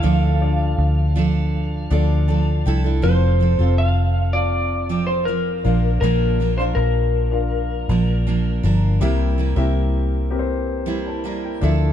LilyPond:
<<
  \new Staff \with { instrumentName = "Electric slide guitar" } { \time 4/4 \key f \major \tempo 4 = 80 f''2.~ f''8 r8 | c''4 f''8. d''4 c''16 bes'4 | bes'8. c''16 bes'2~ bes'8 r8 | r1 | }
  \new Staff \with { instrumentName = "Grand piano" } { \time 4/4 \key f \major << { r2. a''8 g''8 | r1 | r1 | r2 r8 <bes' g''>16 <c'' a''>16 <d'' bes''>16 <bes' g''>8 r16 | } \\ { <d' f' a' f''>16 r16 <d' f' a' d''>4.~ <d' f' a' d''>16 r16 <d' f' a' d''>4~ <d' f' a' d''>16 r16 | <c' f' a' f''>8. <c' f' a' f''>8. r16 <c' f' f'' a''>4.~ <c' f' f'' a''>16 <d' f' bes' f''>8~ | <d' f' bes' f''>8 r16 <d' f' bes' f''>8. r16 <d' f' bes' f''>4.~ <d' f' bes' f''>16 r8 | <c' g' bes' e''>8. <c' g' bes' e''>8. r16 <c' g' bes' b' c''>4.~ <c' g' bes' b' c''>16 <d' f' a' e''>8 | } >> }
  \new Staff \with { instrumentName = "Steel-string acoustic guitar" } { \time 4/4 \key f \major <d f d' a'>4. <f d' a'>4 <f d' a'>8 <f d' a'>8 <f d' e' a'>16 <d' e' a'>16 | <f c' f' a'>8 <f c' f' a'>16 <c' f' a'>4.~ <c' f' a'>16 <f c' f' a'>8 <f c' f'>8 <f bes d' bes'>8 | <bes, d f bes d' bes'>8 <f bes d' bes'>16 <f bes d' bes'>4.~ <f bes d' bes'>16 <f bes d' bes'>8 <f bes d' bes'>8 <f bes d' bes'>8 | <c g bes e' bes'>8 <g bes e' bes'>16 <bes e' bes'>4.~ <bes e' bes'>16 <g bes e' bes'>8 <g bes e' bes'>8 <f d' e' a'>8 | }
  \new Staff \with { instrumentName = "Fingered electric bass" } { \clef bass \time 4/4 \key f \major d,4 d,4. d,4 c,8 | f,,8. f,,2~ f,,8. bes,,8 | bes,,4 bes,,4. bes,,4 g,,8 | c,8. c,2~ c,8. d,8 | }
>>